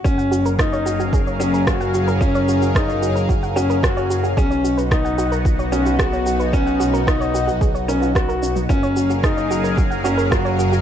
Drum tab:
SH |xxxxxxxxxxxxxxxx|xxxxxxxxxxxxxxxx|xxxxxxxxxxxxxxxx|xxxxxxxxxxxxxxxx|
SD |----r-------r---|----r-------r---|----r-------r---|----r-------r---|
BD |o---o---o---o---|o---o---o---o---|o---o---o---o---|o---o---o---o---|

SH |xxxxxxxxxxxxxxxx|
SD |----r-------r---|
BD |o---o---o---o---|